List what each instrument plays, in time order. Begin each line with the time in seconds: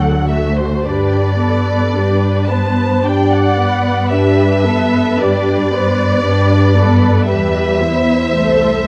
Already playing: cello section D2, viola section F#3 A4, violin section F#4
0.01 violin section F#5
0.29 viola section A3 F#4, violin section E5
0.57 violin section C5
0.85 cello section G2, viola section D4 G4, violin section B4 D5
1.40 viola section B3 B4, violin section A4
1.95 cello section G2, viola section D4 G4, violin section B4
2.49 viola section B3 B4, violin section C5 A5
3.05 cello section G2, viola section D4 G4, violin section D5 G5
3.31 violin section F#5
3.59 viola section B3 B4
4.12 cello section G2, viola section D4 G4, violin section B4 E5
4.65 viola section B3 B4, violin section A4
5.18 cello section G2, viola section D4 G4, violin section B4 D5
5.71 viola section B3 B4, violin section C5
6.24 cello section G2, viola section D4 G4, violin section B4
6.76 viola section B3 B4, violin section A4
7.28 cello section E2, viola section G3 G4, violin section B4 E5
7.80 viola section B3 E4, violin section C5
8.35 cello section C2, viola section A3 A4